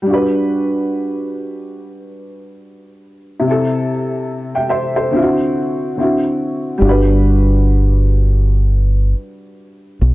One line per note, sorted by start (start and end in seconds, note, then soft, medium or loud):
0.02 3.38 G3 medium
0.06 3.40 D4 medium
0.06 3.42 F#4 medium
0.14 3.44 B4 medium
3.40 5.07 C3 medium
3.40 5.09 C4 medium
3.47 5.11 E4 medium
3.47 3.89 A4 medium
4.55 4.68 E5 medium
4.55 4.71 G5 medium
4.69 4.93 C5 medium
4.69 4.93 E5 medium
4.96 5.36 A4 soft
4.96 5.35 C5 medium
5.11 5.94 D3 medium
5.11 5.96 C4 medium
5.11 5.98 E4 medium
5.16 5.22 F4 medium
5.22 6.00 F#4 medium
5.96 6.81 D3 medium
5.96 6.82 C4 medium
5.96 6.83 E4 medium
6.02 6.84 F#4 medium
6.78 9.13 G1 loud
6.78 10.14 G3 medium
6.78 10.14 D4 medium
6.85 10.14 F#4 medium
6.89 10.14 B4 medium
10.02 10.14 B1 medium